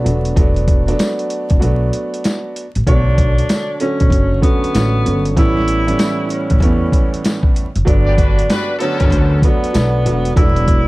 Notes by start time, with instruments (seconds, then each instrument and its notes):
0.04 upright bass E1, upright piano F#3 A3 B3 D4, closed hi-hat
0.25 closed hi-hat
0.36 upright bass E1, upright piano F#3 A3 B3 D4, kick, closed hi-hat
0.56 closed hi-hat
0.68 kick, closed hi-hat
0.87 upright piano F#3 A3 B3 D4, closed hi-hat
0.99 snare, closed hi-hat, tambourine
1.19 closed hi-hat
1.30 closed hi-hat
1.50 upright bass E1, kick, closed hi-hat
1.60 upright bass B1, upright piano F#3 A3 B3 D4, closed hi-hat
1.93 closed hi-hat
2.14 closed hi-hat
2.24 snare, closed hi-hat, tambourine
2.56 closed hi-hat
2.75 upright bass A1, closed hi-hat
2.87 upright bass B1, upright piano D3 F#3 A3 C#5, tenor saxophone D4, kick, closed hi-hat
3.18 kick, closed hi-hat
3.38 closed hi-hat
3.49 snare, closed hi-hat, tambourine
3.80 upright piano D3 F#3 A3 C#4, tenor saxophone C#4, closed hi-hat
4.00 upright bass B1, kick, closed hi-hat
4.10 upright bass F#1, kick, closed hi-hat
4.41 upright piano D3 F#3 A3 C#4, tenor saxophone B3, kick, closed hi-hat
4.64 closed hi-hat
4.74 upright bass A1, upright piano D3 F#3 A3 C#4, snare, closed hi-hat, tambourine
5.05 upright bass G1, upright piano D3 F#3 A3 C#4, closed hi-hat
5.25 closed hi-hat
5.36 upright bass A1, upright piano A2 E3 G3 B3 C#4, tenor saxophone E4, kick, closed hi-hat
5.57 snare
5.68 closed hi-hat
5.87 upright piano A2 E3 G3 B3 C#4, closed hi-hat
5.99 snare, closed hi-hat, tambourine
6.30 tenor saxophone C#4, closed hi-hat
6.50 upright bass A1, kick, closed hi-hat
6.60 upright bass E2, upright piano A2 E3 G3 B3 C#4, kick, closed hi-hat
6.92 kick, closed hi-hat
7.14 closed hi-hat
7.25 snare, closed hi-hat, tambourine
7.43 kick
7.56 closed hi-hat
7.75 upright bass F#1, closed hi-hat
7.85 upright bass G1, upright piano F#3 A3 B3 D4, tenor saxophone D4, kick, closed hi-hat
8.06 trumpet section B3 G4 D5
8.17 trumpet section G3 F#4 B4, kick, closed hi-hat
8.39 closed hi-hat
8.48 trumpet section G3 F#4 B4, snare, closed hi-hat, tambourine
8.79 upright piano D3 F#3 A3 B3, trumpet section F#3 B3 A4, tenor saxophone C#4, closed hi-hat
9.00 upright bass G1, kick, closed hi-hat
9.10 upright bass D2, kick, closed hi-hat
9.42 upright piano F#3 A3 B3 D4, tenor saxophone B3, kick, closed hi-hat
9.64 closed hi-hat
9.73 upright bass B1, upright piano F#3 A3 B3 D4, snare, closed hi-hat, tambourine
10.05 upright bass E1, upright piano F#3 A3 B3 D4, closed hi-hat
10.25 closed hi-hat
10.36 upright bass E1, upright piano F#3 A3 B3 D4, tenor saxophone E4, kick, closed hi-hat
10.56 closed hi-hat
10.68 kick, closed hi-hat